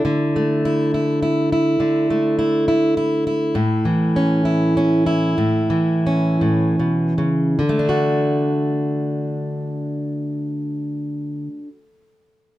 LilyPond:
\new Staff \with { instrumentName = "Steel-string acoustic guitar" } { \time 6/8 \key d \major \tempo 4. = 63 << { e'4 e'8 e'8 e'8 e'8~ | e'4 e'8 e'8 e'8 e'8~ | e'4 cis'8 e'8 cis'8 e'8~ | e'4 cis'2 |
<a d' fis'>2.~ | <a d' fis'>2. | } \\ { d8 a2~ a8 | d8 a2~ a8 | a,8 e2~ e8 | a,8 e4 a,8 b,8 cis8 |
d2.~ | d2. | } >> }